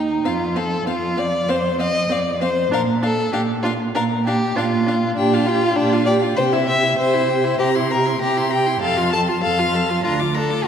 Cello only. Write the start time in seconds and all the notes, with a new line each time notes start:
Already playing: D#2
0.25 F2
0.87 F2
1.48 F2
2.11 F2
2.73 A#2
3.34 A#2
3.96 A#2
4.57 A#2
5.18 A#2
5.78 A#2
6.38 C3
6.98 C3
7.60 C3
8.21 C3
8.82 F2
9.44 F2
10.05 D2